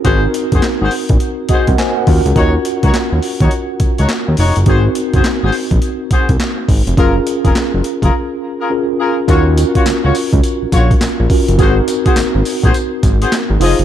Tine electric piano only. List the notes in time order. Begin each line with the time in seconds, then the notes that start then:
0.04 C4 D#4 F#4 A#4
1.50 F#4 D#5
1.68 A#4 F#5
1.78 C5 G#5
1.97 A#4 F#5
2.06 C#4 F4 F#4 A#4
4.66 C4 D#4 F#4 A#4
6.97 C#4 F4 G#4 A#4
8.70 C#4 F4 G#4 A#4
9.27 C#4 F4 F#4 A#4
11.30 C#4 F4 F#4 A#4
11.58 C4 D#4 F#4 A#4
13.60 D#4 F4 G#4 C5